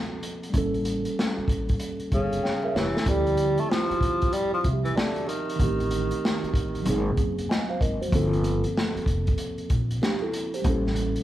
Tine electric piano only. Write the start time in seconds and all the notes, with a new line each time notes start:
Already playing: F3 A#3 C4 A4
0.50 G3 A#3
0.55 C#4 A4
2.43 C#5 G5
2.64 A#4 E5
2.75 G4 C#5
2.96 E4 A4
3.03 F3 C4
3.08 E4 G4
4.63 F3 C4 F#4 E5
4.73 G4
5.56 D#3 A3
5.61 C4 G4
6.82 F#3 A#3
6.87 C4 G#4
7.49 D#5 G#5
7.70 C5 F5
7.81 A#4 D#5
8.01 F#4 C5
8.08 F3 A#3
8.13 C4 A4
10.02 D4 G4
10.22 E4 A4
10.54 G4 C5
10.62 G3 A#3
10.67 C#4 A4